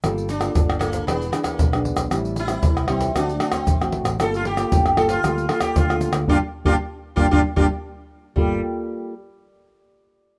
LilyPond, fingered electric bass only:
\new Staff \with { instrumentName = "Fingered electric bass" } { \clef bass \time 4/4 \key g \minor \tempo 4 = 115 g,,4 g,,4 e,,8 r8 b,,8. b,,16 | a,,4 c,4 d,8 r8 a,,8. a,,16 | g,,4 g,,4 d,8 r8 d,8. d,16 | g,,16 r8 g,,16 r8. g,,16 g,,16 r16 g,,16 r4 r16 |
g,,8 r2. r8 | }